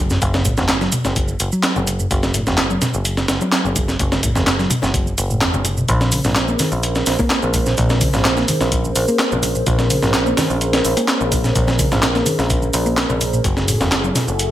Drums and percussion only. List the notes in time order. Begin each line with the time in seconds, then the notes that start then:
0.10 snare, shaker
0.21 kick, closed hi-hat, shaker
0.34 snare, high bongo, shaker
0.45 kick, closed hi-hat, shaker
0.57 snare, high bongo, shaker
0.69 snare, clap, closed hi-hat, shaker
0.81 snare, shaker
0.92 closed hi-hat, low conga, shaker
1.05 snare, high bongo, shaker
1.16 kick, closed hi-hat, shaker
1.28 shaker
1.40 closed hi-hat, shaker
1.52 shaker
1.63 snare, clap, closed hi-hat, shaker
1.76 low conga, shaker
1.87 closed hi-hat, low conga, shaker
1.99 shaker
2.11 kick, closed hi-hat, shaker
2.23 snare, shaker
2.34 closed hi-hat, shaker
2.47 snare, shaker
2.58 snare, clap, closed hi-hat, shaker
2.70 shaker
2.82 snare, closed hi-hat, low conga, shaker
2.94 shaker
3.05 closed hi-hat, shaker
3.17 snare, shaker
3.28 snare, closed hi-hat, shaker
3.41 high bongo, shaker
3.52 snare, clap, closed hi-hat, shaker
3.65 shaker
3.76 kick, closed hi-hat, low conga, shaker
3.88 snare, shaker
3.99 kick, closed hi-hat, shaker
4.12 snare, high bongo, shaker
4.23 kick, closed hi-hat, shaker
4.35 snare, high bongo, shaker
4.47 snare, clap, closed hi-hat, shaker
4.59 snare, shaker
4.70 closed hi-hat, low conga, shaker
4.82 snare, high bongo, high conga, shaker
4.94 kick, closed hi-hat, shaker
5.07 shaker
5.18 closed hi-hat, shaker
5.30 shaker
5.41 snare, clap, closed hi-hat, shaker
5.54 low conga, shaker
5.65 closed hi-hat, low conga, shaker
5.77 shaker
5.88 kick, closed hi-hat, shaker
6.01 snare, shaker
6.12 closed hi-hat, open hi-hat, shaker
6.24 snare, shaker
6.35 snare, clap, closed hi-hat, shaker
6.48 shaker
6.59 snare, closed hi-hat, open hi-hat, low conga, shaker
6.72 shaker
6.83 closed hi-hat, shaker
6.95 snare, shaker
7.06 snare, closed hi-hat, open hi-hat, shaker
7.19 kick, high bongo, shaker
7.30 snare, clap, closed hi-hat, shaker
7.42 shaker
7.54 kick, closed hi-hat, open hi-hat, low conga, shaker
7.66 snare, shaker
7.77 kick, closed hi-hat, shaker
7.89 snare, high bongo, shaker
8.01 kick, closed hi-hat, open hi-hat, shaker
8.13 snare, high bongo, shaker
8.25 snare, clap, closed hi-hat, shaker
8.37 snare, shaker
8.48 closed hi-hat, open hi-hat, low conga, shaker
8.61 snare, high bongo, shaker
8.72 kick, closed hi-hat, shaker
8.84 shaker
8.96 closed hi-hat, open hi-hat, shaker
9.08 shaker
9.19 snare, clap, closed hi-hat, shaker
9.32 low conga, shaker
9.42 closed hi-hat, open hi-hat, low conga, shaker
9.55 shaker
9.66 kick, closed hi-hat, shaker
9.79 snare, shaker
9.90 closed hi-hat, open hi-hat, shaker
10.02 snare, shaker
10.14 snare, clap, closed hi-hat, shaker
10.26 shaker
10.37 snare, closed hi-hat, open hi-hat, low conga, shaker
10.50 shaker
10.61 closed hi-hat, shaker
10.73 snare, closed hi-hat, shaker
10.85 open hi-hat, shaker
10.97 closed hi-hat, high bongo, shaker
11.08 snare, clap, closed hi-hat, shaker
11.21 shaker
11.32 kick, closed hi-hat, open hi-hat, low conga, shaker
11.44 snare, shaker
11.55 kick, closed hi-hat, shaker
11.67 snare, high bongo, shaker
11.79 kick, closed hi-hat, open hi-hat, shaker
11.91 snare, high bongo, shaker
12.03 snare, clap, closed hi-hat, shaker
12.15 snare, shaker
12.26 closed hi-hat, open hi-hat, low conga, shaker
12.39 snare, high bongo, shaker
12.50 kick, closed hi-hat, shaker
12.62 shaker
12.73 closed hi-hat, open hi-hat, shaker
12.86 shaker
12.97 snare, clap, closed hi-hat, shaker
13.09 low conga, shaker
13.21 closed hi-hat, open hi-hat, low conga, shaker
13.33 shaker
13.44 kick, closed hi-hat, shaker
13.57 snare, shaker
13.68 closed hi-hat, open hi-hat, shaker
13.81 snare, shaker
13.92 snare, clap, closed hi-hat, shaker
14.04 shaker
14.15 snare, closed hi-hat, open hi-hat, low conga, shaker
14.28 shaker
14.39 closed hi-hat, shaker